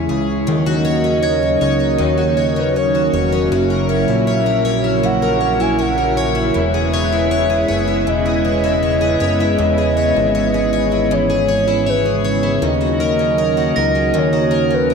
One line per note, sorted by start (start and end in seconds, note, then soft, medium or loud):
0.00 0.43 C#3 medium
0.00 0.47 C#3 medium
0.00 0.45 E3 medium
0.00 0.43 G#3 medium
0.00 0.55 G#3 medium
0.00 1.04 C#4 medium
0.00 0.45 E4 medium
0.00 0.11 C#5 medium
0.00 0.66 B6 soft
0.09 0.46 C#2 medium
0.09 0.55 G#4 medium
0.47 1.58 D#2 loud
0.47 6.51 C#3 medium
0.47 1.97 D#3 medium
0.47 6.51 F#3 medium
0.47 6.51 A#3 medium
0.47 3.48 D#4 medium
0.47 2.03 D#5 medium
0.66 1.42 F#4 medium
0.85 1.22 C#5 medium
1.04 1.80 C#4 medium
1.23 1.61 C#5 medium
1.23 2.55 G#6 soft
1.43 2.17 F#4 medium
1.61 1.98 C#2 medium
1.61 2.37 C#5 medium
1.80 2.56 C#4 soft
1.98 3.10 D#2 loud
1.98 3.51 D#3 medium
1.98 2.61 C#5 medium
2.18 2.94 F#4 medium
2.37 2.76 C#5 medium
2.56 3.32 C#4 medium
2.56 2.79 B4 medium
2.76 3.13 C#5 medium
2.76 3.33 C#5 medium
2.95 3.70 F#4 medium
3.14 3.50 E1 medium
3.14 3.89 C#5 medium
3.32 4.07 C#4 medium
3.51 4.06 F#1 loud
3.51 5.02 F#3 medium
3.51 12.58 E4 medium
3.51 5.06 E5 loud
3.70 4.45 A#4 medium
3.89 4.27 C#5 medium
4.08 6.52 A#1 medium
4.08 4.84 E4 medium
4.27 4.65 C#5 medium
4.46 5.21 A#4 medium
4.65 5.40 C#5 medium
4.84 5.60 E4 soft
5.03 6.63 F#3 medium
5.03 5.63 F#5 loud
5.22 5.97 A#4 medium
5.41 5.78 C#5 medium
5.60 6.35 E4 medium
5.60 5.83 G#5 medium
5.79 6.17 C#5 medium
5.79 6.37 F#5 loud
5.98 6.63 A#4 medium
6.17 6.93 C#5 medium
6.35 7.12 E4 medium
6.54 7.66 E1 loud
6.54 14.94 C#3 medium
6.54 8.06 E3 medium
6.54 12.59 G#3 medium
6.54 12.59 B3 medium
6.54 8.10 E5 loud
6.74 7.49 G#4 medium
6.94 7.31 C#5 medium
7.12 7.86 E4 medium
7.31 7.68 C#5 medium
7.50 8.24 G#4 medium
7.68 8.06 F#1 medium
7.68 8.44 C#5 medium
7.87 8.62 E4 medium
8.07 9.17 E1 loud
8.07 9.57 E3 medium
8.07 9.60 D#5 loud
8.26 9.00 G#4 medium
8.45 8.82 C#5 medium
8.64 9.39 E4 medium
8.83 9.20 C#5 medium
9.01 9.77 G#4 medium
9.20 9.57 F#1 loud
9.20 9.96 C#5 medium
9.40 10.15 E4 medium
9.58 10.13 E1 loud
9.58 11.10 E3 medium
9.58 11.15 D#5 loud
9.78 10.53 G#4 medium
9.97 10.34 C#5 medium
10.16 12.59 G#1 medium
10.16 10.91 E4 medium
10.35 10.72 C#5 medium
10.54 11.28 G#4 medium
10.73 11.48 C#5 medium
10.92 11.66 E4 medium
11.11 12.62 E3 medium
11.11 11.91 C#5 loud
11.30 12.04 G#4 medium
11.49 11.86 C#5 medium
11.68 12.42 E4 medium
11.87 12.45 B4 medium
11.87 12.24 C#5 medium
12.05 12.70 G#4 medium
12.25 14.17 C#5 medium
12.43 12.70 E4 medium
12.62 13.72 D#2 loud
12.62 14.13 D#3 medium
12.62 14.94 F#3 medium
12.62 14.94 A#3 medium
12.62 14.94 D#4 medium
12.62 14.19 D#5 loud
12.81 13.57 F#4 medium
13.00 13.38 A#4 medium
13.19 13.95 C#4 medium
13.38 13.76 A#4 medium
13.57 14.32 F#4 medium
13.76 14.13 C#2 medium
13.76 14.50 A#4 medium
13.76 14.94 A#6 medium
13.95 14.70 C#4 medium
14.14 14.94 D#2 loud
14.14 14.94 D#3 medium
14.14 14.75 C#5 loud
14.33 14.94 F#4 medium
14.51 14.90 A#4 medium
14.71 14.94 C#4 medium
14.71 14.94 B4 medium
14.90 14.94 A#4 medium